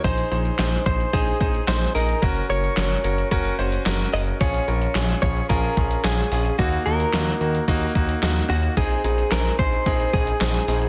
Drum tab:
HH |xxxxxxxxxxxxxxox|xxxxxxxxxxxxxxox|xxxxxxxxxxxxxxox|xxxxxxxxxxxxxxox|
CP |----x-------x---|----x-------x---|----x-------x---|----x-------x---|
SD |----o-------o---|----o-------o---|----o-------o---|----o-------o---|
BD |o-----o-o-o-----|o-------o-------|o-----o-o-o-----|o-------o-o-----|

HH |xxxxxxxxxxxxxxox|
CP |----x-------x---|
SD |----o-------o---|
BD |o-----o-o-o-----|